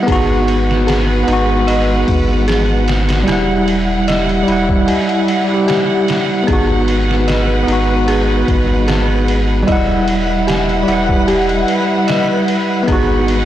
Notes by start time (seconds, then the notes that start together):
Already playing: E4
0.03 B3 G#4
0.07 G#1 G#3 D#4 B4 F#5, kick, ride
0.12 F#4
0.48 ride
0.71 snare
0.87 G#4, snare, ride
1.23 B3
1.28 G#1 D#4, ride
1.33 F#4
1.67 D#5, ride
2.08 G#1, kick, ride
2.48 G#4, snare, ride
2.88 snare, ride
3.09 snare, ride
3.23 G3 E4
3.27 E1 G3 E4 G4, snare, ride
3.33 F#5
3.68 ride
4.08 D#5, snare, ride
4.29 ride
4.43 G3
4.48 E1 E4, ride
4.52 F#5
4.69 kick
4.88 G4, ride
5.09 ride
5.28 ride
5.44 G3
5.49 E4
5.54 G4
5.68 G4, snare, ride
6.08 snare, ride
6.43 G#3 B3 G#4 B4
6.48 G#1 D#4, kick, ride
6.53 F#4
6.88 ride
7.11 snare
7.27 D#5, snare, ride
7.63 B3
7.67 G#1 D#4, ride
7.72 F#4
8.08 G#4, ride
8.48 G#1, kick, ride
8.88 G#4, snare, ride
9.28 ride
9.63 G3
9.67 E1 G3 E4 D#5 F#5, kick, ride
9.72 F#5
10.08 ride
10.47 G4, snare, ride
10.69 ride
10.83 G3
10.88 E1 E4, ride
10.92 F#5
11.09 kick
11.28 G4, ride
11.49 ride
11.68 ride
12.07 D#5, snare, ride
12.48 ride
12.83 B3
12.87 G#1 G#3 D#4 G#4 B4 F#5, kick, ride
12.92 F#4
13.28 ride